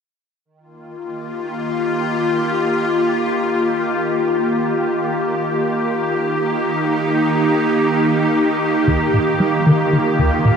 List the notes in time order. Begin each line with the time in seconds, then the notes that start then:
0.45 D#3
0.58 F4
0.62 A#3
0.92 G4
5.77 D#4
8.87 D#2
9.14 A#2
9.40 G3
9.45 F4
9.67 D#3
9.93 D#3
10.19 D#2
10.45 A#2